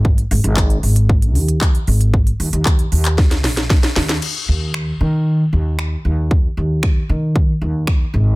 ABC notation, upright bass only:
X:1
M:4/4
L:1/16
Q:1/4=115
K:Abdor
V:1 name="Upright bass" clef=bass
A,,,2 A,,, A,,,3 A,,,4 E,,4 A,,,2- | A,,,2 E,, E,,3 E,,4 B,,,4 E,,2 | z2 E,,4 E,4 E,,4 E,,2- | E,,2 E,,4 E,4 E,,4 A,,,2 |]